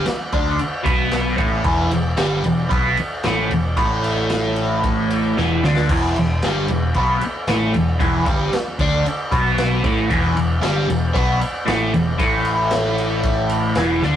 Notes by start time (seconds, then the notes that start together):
0.06 muted overdriven electric guitar stroke, muted picked electric bass stroke, snare, ride
0.32 D2 D3 D4, kick, ride
0.59 muted overdriven electric guitar stroke, muted picked electric bass stroke, ride
0.83 B1 B2 B3, kick, ride
1.11 snare, ride
1.37 A1 A2 A3, kick, ride
1.64 E1 E2 E3, kick, ride
1.91 E1 E2, ride
2.17 G1 G2 G3, snare, ride
2.44 E1 E2, ride
2.69 B1 B2 B3, kick, ride
2.97 muted overdriven electric guitar stroke, muted picked electric bass stroke, ride
3.23 A1 A2 A3, snare, ride
3.50 E1 E2, ride
3.77 A1 A2 A3, kick, ride
4.04 ride
4.30 snare, ride
4.56 ride
4.84 kick, ride
5.10 ride
5.37 E1 E2 E3, snare
5.63 D2 D3 D4, snare
5.76 snare
5.89 E1 E2 E3, kick, crash
6.16 E1 E2, ride
6.42 G1 G2 G3, snare, ride
6.68 E1 E2, ride
6.94 B1 B2 B3, kick, ride
7.21 muted picked electric bass stroke, muted overdriven electric guitar stroke, ride
7.47 A1 A2 A3, snare, ride
7.73 E1 E2, ride
7.99 E1 E2 E3, kick, ride
8.26 G1 G2 G3, kick, ride
8.52 muted picked electric bass stroke, muted overdriven electric guitar stroke, snare, ride
8.79 D2 D3 D4, kick, ride
9.05 muted picked electric bass stroke, muted overdriven electric guitar stroke, ride
9.31 B1 B2 B3, kick, ride
9.58 snare, ride
9.84 A1 A2 A3, kick, ride
10.10 E1 E2 E3, kick, ride
10.35 E1 E2, ride
10.61 G1 G2 G3, snare, ride
10.88 E1 E2, ride
11.14 B1 B2 B3, kick, ride
11.41 muted overdriven electric guitar stroke, muted picked electric bass stroke, ride
11.65 A1 A2 A3, snare, ride
11.92 E1 E2, ride
12.18 A1 A2 A3, kick, ride
12.45 ride
12.71 snare, ride
12.98 ride
13.23 kick, ride
13.49 ride
13.75 E1 E2 E3, snare, ride
14.02 D2 D3 D4, snare